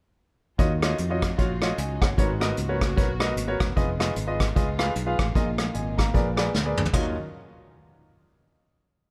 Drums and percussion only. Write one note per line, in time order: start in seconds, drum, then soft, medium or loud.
0.59 kick medium
0.59 closed hi-hat medium
0.82 cross-stick loud
0.82 closed hi-hat medium
0.98 closed hi-hat medium
1.22 kick medium
1.22 cross-stick loud
1.22 closed hi-hat medium
1.39 kick medium
1.39 closed hi-hat medium
1.62 cross-stick medium
1.62 closed hi-hat medium
1.78 closed hi-hat medium
2.02 kick loud
2.02 cross-stick loud
2.02 closed hi-hat medium
2.18 kick medium
2.18 closed hi-hat medium
2.41 cross-stick medium
2.41 closed hi-hat medium
2.57 closed hi-hat medium
2.81 kick medium
2.81 cross-stick loud
2.81 closed hi-hat medium
2.98 kick loud
2.98 closed hi-hat medium
3.20 cross-stick loud
3.20 closed hi-hat medium
3.37 closed hi-hat medium
3.60 kick medium
3.60 cross-stick loud
3.60 closed hi-hat medium
3.77 kick medium
3.77 closed hi-hat medium
4.00 cross-stick medium
4.00 closed hi-hat medium
4.16 closed hi-hat medium
4.40 kick medium
4.40 cross-stick loud
4.40 closed hi-hat medium
4.56 kick medium
4.56 closed hi-hat medium
4.79 cross-stick loud
4.79 closed hi-hat medium
4.95 closed hi-hat medium
5.19 kick medium
5.19 cross-stick loud
5.19 closed hi-hat medium
5.35 kick medium
5.35 closed hi-hat medium
5.58 cross-stick medium
5.58 closed hi-hat medium
5.74 closed hi-hat medium
5.99 kick medium
5.99 cross-stick loud
5.99 closed hi-hat medium
6.14 kick medium
6.14 closed hi-hat medium
6.37 cross-stick loud
6.37 closed hi-hat medium
6.54 snare soft
6.77 mid tom medium
6.85 floor tom medium
6.93 kick medium
6.93 floor tom medium
6.93 splash medium